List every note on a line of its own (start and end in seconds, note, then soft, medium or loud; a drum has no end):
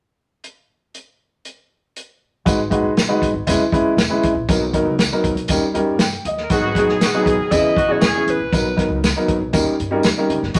0.44 closed hi-hat medium
0.94 closed hi-hat soft
1.45 closed hi-hat medium
1.96 closed hi-hat medium
2.45 2.76 G#1 medium
2.45 2.59 G#3 medium
2.45 2.59 D#4 medium
2.45 2.59 F#4 medium
2.45 2.59 B4 medium
2.45 kick loud
2.45 closed hi-hat medium
2.45 tambourine medium
2.70 2.90 G#3 medium
2.70 2.90 D#4 medium
2.70 2.91 F#4 medium
2.70 2.91 B4 medium
2.70 kick medium
2.70 closed hi-hat medium
2.84 3.03 A#1 medium
2.97 snare medium
2.97 closed hi-hat medium
2.97 tambourine medium
3.08 3.28 G#3 medium
3.08 3.28 D#4 medium
3.08 3.29 F#4 medium
3.08 3.29 B4 medium
3.22 3.31 B1 medium
3.22 kick medium
3.22 closed hi-hat medium
3.34 3.44 G#1 medium
3.47 3.57 E1 loud
3.47 3.60 G#3 medium
3.47 3.60 C#4 medium
3.47 3.60 E4 medium
3.47 3.61 B4 medium
3.47 kick medium
3.47 closed hi-hat loud
3.47 tambourine medium
3.60 muted upright bass stroke soft
3.72 3.92 G#1 medium
3.72 3.92 G#3 medium
3.72 3.92 C#4 medium
3.72 3.92 E4 medium
3.72 3.92 B4 medium
3.72 kick medium
3.72 closed hi-hat medium
3.97 4.07 E1 medium
3.97 snare loud
3.97 closed hi-hat medium
3.97 tambourine medium
4.10 4.30 G#3 medium
4.10 4.30 C#4 medium
4.10 4.30 E4 medium
4.10 4.30 B4 medium
4.23 4.33 A1 medium
4.23 kick medium
4.23 closed hi-hat medium
4.35 4.45 A#1 medium
4.49 4.78 B1 loud
4.49 4.62 F#3 medium
4.49 4.62 B3 medium
4.49 4.62 D#4 medium
4.49 4.62 A#4 medium
4.49 kick loud
4.49 closed hi-hat medium
4.49 tambourine medium
4.73 4.93 F#3 medium
4.73 4.93 B3 medium
4.73 4.93 D#4 medium
4.73 4.93 A#4 medium
4.73 kick medium
4.73 closed hi-hat medium
4.85 5.05 C#2 medium
4.99 snare medium
4.99 closed hi-hat medium
4.99 tambourine medium
5.12 5.31 F#3 medium
5.12 5.32 B3 medium
5.12 5.32 D#4 medium
5.12 5.32 A#4 medium
5.24 5.34 D#2 medium
5.24 kick medium
5.24 closed hi-hat medium
5.36 5.46 B1 medium
5.36 closed hi-hat medium
5.48 5.59 D#2 medium
5.48 5.63 G3 medium
5.48 5.63 C#4 medium
5.48 5.63 D#4 medium
5.48 5.63 A#4 medium
5.48 kick medium
5.48 closed hi-hat medium
5.48 tambourine medium
5.62 muted upright bass stroke soft
5.74 6.14 G2 medium
5.74 5.94 G3 medium
5.74 5.94 C#4 medium
5.74 5.94 D#4 medium
5.74 5.94 A#4 medium
5.74 closed hi-hat medium
5.99 6.24 G5 medium
5.99 snare loud
5.99 closed hi-hat medium
5.99 tambourine medium
6.12 closed hi-hat soft
6.25 6.45 D#2 medium
6.25 6.74 D#5 medium
6.25 closed hi-hat medium
6.37 snare soft
6.44 6.53 A#4 medium
6.50 6.80 G#1 loud
6.50 6.86 D#3 medium
6.50 6.64 F#3 medium
6.50 6.86 B3 medium
6.50 6.64 B3 medium
6.50 6.64 D#4 medium
6.50 6.86 F#4 loud
6.50 6.64 G#4 medium
6.50 7.53 G#4 medium
6.50 kick loud
6.50 closed hi-hat medium
6.50 tambourine medium
6.75 6.96 F#3 medium
6.75 6.96 B3 medium
6.75 6.96 D#4 medium
6.75 6.96 G#4 medium
6.75 kick medium
6.75 snare soft
6.75 closed hi-hat medium
6.87 7.08 A#1 medium
6.87 6.98 D#3 medium
6.87 6.98 B3 medium
6.87 6.98 G#4 medium
6.87 snare soft
7.01 7.21 D#3 medium
7.01 7.22 B3 medium
7.01 7.21 F#4 medium
7.01 snare medium
7.01 closed hi-hat medium
7.01 tambourine medium
7.14 7.34 F#3 medium
7.14 7.34 B3 medium
7.14 7.34 D#4 medium
7.14 7.34 G#4 medium
7.26 7.36 B1 medium
7.26 7.46 D#3 medium
7.26 7.46 B3 medium
7.26 7.47 G#4 medium
7.26 kick medium
7.26 closed hi-hat medium
7.38 7.48 G#1 medium
7.51 7.61 E1 loud
7.51 7.72 C#3 medium
7.51 7.71 E3 medium
7.51 7.71 B3 medium
7.51 7.72 B3 medium
7.51 7.71 C#4 medium
7.51 7.72 E4 medium
7.51 7.71 G#4 medium
7.51 7.93 D#5 loud
7.51 kick medium
7.51 closed hi-hat medium
7.51 tambourine medium
7.64 muted upright bass stroke soft
7.76 7.96 G#1 medium
7.76 7.97 F#3 medium
7.76 7.97 D#4 medium
7.76 7.97 F#4 loud
7.76 kick medium
7.76 closed hi-hat medium
7.88 8.02 E3 medium
7.88 8.02 B3 medium
7.88 8.02 C#4 medium
7.88 8.02 G#4 medium
7.88 8.31 C#5 medium
8.01 8.12 E1 medium
8.01 8.37 E3 medium
8.01 8.37 C#4 medium
8.01 8.37 G#4 loud
8.01 snare loud
8.01 closed hi-hat medium
8.01 tambourine medium
8.15 8.35 E3 medium
8.15 8.34 B3 medium
8.15 8.35 C#4 medium
8.15 8.35 G#4 medium
8.27 8.37 A1 medium
8.27 9.05 B4 medium
8.27 closed hi-hat medium
8.40 8.50 A#1 medium
8.53 8.82 B1 medium
8.53 8.66 F#3 medium
8.53 8.66 B3 medium
8.53 8.66 D#4 medium
8.53 8.66 A#4 medium
8.53 kick loud
8.53 closed hi-hat medium
8.53 tambourine medium
8.76 8.97 F#3 medium
8.76 8.97 B3 medium
8.76 8.97 D#4 medium
8.76 8.97 A#4 medium
8.76 kick medium
8.76 snare soft
8.76 closed hi-hat medium
8.90 9.10 C#2 medium
9.04 snare medium
9.04 closed hi-hat medium
9.04 tambourine medium
9.16 9.36 F#3 medium
9.16 9.36 B3 medium
9.16 9.36 D#4 medium
9.16 9.36 A#4 medium
9.28 9.38 D#2 medium
9.28 kick medium
9.28 closed hi-hat medium
9.41 9.51 B1 medium
9.53 9.64 D#2 medium
9.53 9.73 G3 medium
9.53 9.73 C#4 medium
9.53 9.73 D#4 medium
9.53 9.73 A#4 medium
9.53 kick medium
9.53 closed hi-hat medium
9.53 tambourine medium
9.67 muted upright bass stroke soft
9.80 9.99 G2 medium
9.80 closed hi-hat medium
9.91 10.04 G3 medium
9.91 10.05 C#4 medium
9.91 10.05 D#4 medium
9.91 10.05 A#4 medium
10.03 10.15 D#2 medium
10.03 snare loud
10.03 closed hi-hat medium
10.03 tambourine medium
10.17 10.37 G3 medium
10.17 10.37 C#4 medium
10.17 10.37 D#4 medium
10.17 10.37 A#4 medium
10.30 10.40 F#1 medium
10.30 closed hi-hat medium
10.43 10.52 G1 medium
10.43 snare soft
10.54 10.59 G#1 loud
10.54 10.59 D#3 medium
10.54 10.59 F#3 medium
10.54 10.59 B3 medium
10.54 10.59 F#4 loud
10.54 10.59 G#4 medium
10.54 kick loud
10.54 closed hi-hat medium
10.54 tambourine medium